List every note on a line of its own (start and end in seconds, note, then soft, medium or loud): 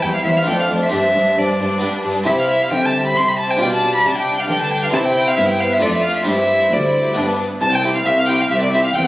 0.00 0.23 E2 soft
0.00 0.12 E2 soft
0.00 0.24 G3 soft
0.00 0.41 C4 soft
0.00 0.44 E4 soft
0.00 0.22 E4 soft
0.00 0.44 G4 soft
0.00 0.24 C5 soft
0.00 0.14 G5 medium
0.15 0.25 F5 medium
0.24 0.33 E2 soft
0.24 0.45 E2 soft
0.24 0.47 G3 soft
0.24 0.46 E4 soft
0.24 0.45 C5 soft
0.24 0.39 E5 medium
0.37 0.48 F5 medium
0.43 0.87 C4 soft
0.43 0.88 D4 soft
0.43 0.67 D4 soft
0.43 0.90 A4 soft
0.43 0.68 C5 soft
0.47 0.67 F2 soft
0.47 0.56 F2 soft
0.47 0.69 A3 soft
0.47 0.59 G5 medium
0.60 0.68 F5 soft
0.69 0.90 F2 soft
0.69 0.78 F2 soft
0.69 0.92 A3 soft
0.69 0.90 D4 soft
0.69 0.90 C5 soft
0.83 0.92 E5 soft
0.88 1.00 G2 soft
0.88 1.78 C4 soft
0.88 1.78 D4 soft
0.88 1.13 D4 soft
0.88 1.79 G4 soft
0.88 1.12 C5 soft
0.93 1.13 G2 soft
0.93 1.14 G3 soft
0.93 1.40 E5 medium
1.13 1.22 G2 soft
1.13 1.35 G2 soft
1.13 1.36 G3 soft
1.13 1.35 D4 soft
1.13 1.34 C5 soft
1.36 1.45 G2 soft
1.36 1.58 G2 soft
1.36 1.59 G3 soft
1.36 1.59 D4 soft
1.36 1.58 C5 soft
1.36 1.83 D5 soft
1.59 1.80 G2 soft
1.59 1.68 G2 soft
1.59 1.81 G3 soft
1.59 1.80 D4 soft
1.59 1.81 C5 soft
1.78 1.90 G2 soft
1.78 2.24 B3 soft
1.78 2.24 D4 soft
1.78 2.02 D4 soft
1.78 2.25 G4 soft
1.82 2.03 G2 soft
1.82 2.03 G3 soft
1.82 2.03 B4 soft
2.03 2.13 G2 soft
2.03 2.25 G2 soft
2.03 2.26 G3 soft
2.03 2.26 D4 soft
2.03 2.26 B4 soft
2.23 2.68 C3 medium
2.23 4.90 G3 soft
2.23 3.55 C4 soft
2.23 3.55 E4 soft
2.23 2.68 E4 soft
2.23 3.56 G4 soft
2.23 2.31 E5 medium
2.28 2.68 C3 soft
2.28 2.69 C5 soft
2.39 2.50 F5 medium
2.51 2.64 E5 medium
2.62 2.72 F5 medium
2.71 3.12 D3 soft
2.71 3.13 D3 medium
2.71 3.58 C4 soft
2.71 3.61 E5 soft
2.71 2.87 G5 medium
2.85 3.06 A5 medium
3.06 3.19 B5 medium
3.16 3.57 C3 soft
3.16 3.30 C6 medium
3.28 3.38 B5 medium
3.39 3.52 A5 medium
3.51 3.61 G5 medium
3.57 4.02 B2 medium
3.57 4.88 D4 soft
3.57 4.88 F4 soft
3.57 4.89 G4 soft
3.57 4.04 D5 soft
3.61 4.01 B2 soft
3.61 4.47 D4 soft
3.61 3.66 G5 medium
3.74 3.94 A5 medium
3.95 4.08 B5 medium
4.05 4.46 C3 medium
4.05 4.46 C3 soft
4.05 4.49 D5 soft
4.05 4.17 A5 medium
4.18 4.41 G5 medium
4.40 4.49 F5 medium
4.48 4.90 D3 medium
4.48 4.90 D3 soft
4.48 4.92 D4 soft
4.48 4.94 B4 soft
4.48 4.60 G5 medium
4.61 4.72 A5 medium
4.73 4.83 G5 medium
4.83 4.88 F5 medium
4.90 5.34 C3 medium
4.90 5.77 C4 soft
4.90 5.37 C4 soft
4.90 5.78 E4 soft
4.90 5.82 E4 soft
4.90 5.79 G4 soft
4.90 4.98 A5 medium
4.95 5.34 C3 soft
4.95 5.82 C5 soft
5.05 5.29 G5 medium
5.28 5.39 F5 medium
5.37 5.79 G2 medium
5.37 5.78 G2 soft
5.37 5.82 B3 medium
5.37 5.48 E5 medium
5.49 5.61 G5 medium
5.60 5.74 F5 medium
5.72 5.84 E5 medium
5.79 6.23 F2 medium
5.79 6.24 A3 soft
5.79 6.26 A3 soft
5.79 6.23 D4 soft
5.79 6.27 F4 soft
5.79 6.25 A4 soft
5.79 5.92 D5 medium
5.79 6.27 D5 soft
5.83 6.23 F2 soft
5.93 6.03 E5 medium
6.04 6.15 F5 medium
6.16 6.26 E5 medium
6.23 6.68 G2 medium
6.23 7.16 G3 soft
6.23 7.12 C4 soft
6.23 7.13 D4 soft
6.23 7.15 E4 soft
6.23 7.14 G4 soft
6.23 7.15 C5 soft
6.23 6.74 E5 medium
6.27 6.68 G2 soft
6.71 7.13 D2 medium
6.71 7.13 D2 soft
6.71 7.17 D5 medium
7.13 7.58 G2 medium
7.13 7.58 G2 soft
7.13 7.58 B3 soft
7.13 7.41 B3 soft
7.13 7.59 D4 soft
7.13 7.41 D4 soft
7.13 7.60 G4 soft
7.13 7.41 B4 soft
7.60 8.01 C2 soft
7.60 7.98 C2 soft
7.60 7.82 C4 soft
7.60 7.71 A5 medium
7.60 7.76 A5 medium
7.60 7.66 A5 medium
7.72 7.94 G5 soft
7.72 7.95 G5 medium
7.83 8.05 C4 soft
7.83 8.16 C4 soft
7.83 8.16 E4 soft
7.83 8.16 G4 soft
7.93 7.98 F5 soft
7.93 8.06 F5 soft
7.93 8.08 F5 medium
8.06 8.45 C2 soft
8.06 8.43 C2 soft
8.06 8.27 C4 soft
8.06 8.10 E5 soft
8.06 8.17 E5 soft
8.06 8.20 E5 medium
8.17 8.28 F5 soft
8.17 8.31 F5 medium
8.27 8.49 C4 soft
8.27 8.61 C4 soft
8.27 8.61 E4 soft
8.27 8.61 G4 soft
8.27 8.39 G5 soft
8.27 8.43 G5 medium
8.38 8.50 F5 soft
8.38 8.51 F5 soft
8.38 8.51 F5 medium
8.49 8.90 C2 soft
8.49 8.87 C2 soft
8.49 8.71 C4 soft
8.49 8.61 E5 soft
8.49 8.56 E5 medium
8.49 8.62 E5 soft
8.60 8.72 D5 soft
8.60 8.73 D5 soft
8.60 8.73 D5 medium
8.72 8.94 C4 soft
8.72 8.90 C4 soft
8.72 8.90 E4 soft
8.72 8.90 G4 soft
8.72 8.83 E5 soft
8.72 8.84 E5 soft
8.72 8.84 E5 medium
8.83 8.94 F5 soft
8.83 8.95 F5 soft
8.83 8.97 F5 medium
8.93 9.07 E2 soft
8.93 9.07 C4 soft
8.93 9.05 G5 medium
8.93 8.98 G5 medium
8.93 9.07 G5 medium
9.04 9.07 F5 soft